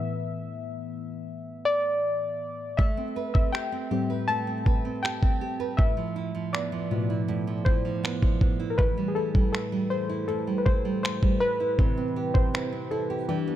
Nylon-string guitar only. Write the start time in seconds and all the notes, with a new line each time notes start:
2.79 A3
2.97 C4
3.16 B4
3.35 C4
3.54 G4
3.72 C4
3.91 G4
4.10 B4
4.28 A3
4.47 C4
4.66 B4
4.85 C4
5.04 G4
5.23 C4
5.41 G4
5.60 B4
5.78 A2
5.97 F3
6.16 E4
6.35 F3
6.53 B3
6.72 F3
6.91 B3
7.10 E4
7.28 A2
7.47 F3
7.66 E4
7.85 F3
8.04 B3
8.22 F3
8.41 B3
8.60 E4
8.79 A2
8.97 G3
9.16 E4
9.35 G3
9.54 A3
9.72 G3
9.91 A3
10.10 E4
10.28 A2
10.47 G3
10.66 E4
10.85 G3
11.03 A3
11.22 G3
11.41 A3
11.60 E4
11.79 C3
11.97 C4
12.16 G4
12.35 C4
12.54 E4
12.72 C4
12.91 E4
13.10 G4
13.29 E3
13.48 B3